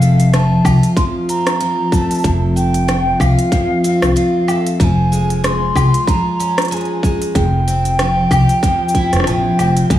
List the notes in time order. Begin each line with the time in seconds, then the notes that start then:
Already playing: F1 F2 F3 F5
0.01 A3, shaker
0.20 closed hi-hat, shaker
0.33 F3 A5, cross-stick, closed hi-hat, shaker
0.64 C2 F4, kick, low woodblock, shaker
0.83 closed hi-hat, shaker
0.96 F2 C6, kick, closed hi-hat, shaker
1.29 C4 A#5, closed hi-hat, shaker
1.47 cross-stick, closed hi-hat, shaker
1.61 F3, closed hi-hat, shaker
1.92 A3 A5, kick, shaker
2.11 closed hi-hat, shaker
2.14 shaker
2.18 shaker
2.21 shaker
2.23 F1 F2, kick, closed hi-hat, shaker
2.25 shaker
2.56 A3 G5, shaker
2.74 closed hi-hat, shaker
2.88 F3, cross-stick, closed hi-hat, shaker
3.20 C2 F4 F5, kick, low woodblock, shaker
3.39 closed hi-hat, shaker
3.52 F2, kick, closed hi-hat, shaker
3.84 C4, closed hi-hat, shaker
4.02 C2, cross-stick, closed hi-hat, shaker
4.15 F3 F5, closed hi-hat, shaker
4.48 A3, low woodblock, shaker
4.67 closed hi-hat, shaker
4.79 F1 F3 A#5, kick, closed hi-hat, shaker
4.83 G#5
5.12 G#3, shaker
5.30 closed hi-hat, shaker
5.43 G#3 C6, cross-stick, closed hi-hat, shaker
5.75 C2 F4, kick, low woodblock, shaker
5.94 closed hi-hat, shaker
6.07 F3 A#5, kick, closed hi-hat, shaker
6.40 C#4, closed hi-hat, shaker
6.58 cross-stick, closed hi-hat, shaker
6.62 closed hi-hat
6.65 closed hi-hat
6.68 G#3 A#5, closed hi-hat
6.72 G#5, closed hi-hat, shaker
6.77 closed hi-hat
6.81 closed hi-hat
6.85 closed hi-hat
7.03 G#3, kick, shaker
7.22 closed hi-hat, shaker
7.34 F1 F2 G5, kick, closed hi-hat, shaker
7.67 C4, closed hi-hat, shaker
7.85 closed hi-hat, shaker
7.99 F3, cross-stick, closed hi-hat, shaker
8.31 C2 G4, kick, closed hi-hat, low woodblock, shaker
8.49 closed hi-hat, shaker
8.63 F2, kick, closed hi-hat, shaker
8.89 shaker
8.95 E4, kick, closed hi-hat
9.13 F1, cross-stick, closed hi-hat, shaker
9.16 cross-stick
9.20 cross-stick
9.24 A#1 F3 A5, cross-stick, closed hi-hat, shaker
9.29 G5
9.58 F1 C4, closed hi-hat, low woodblock, shaker
9.77 closed hi-hat, shaker
9.90 F1 F2 A5, kick, closed hi-hat, shaker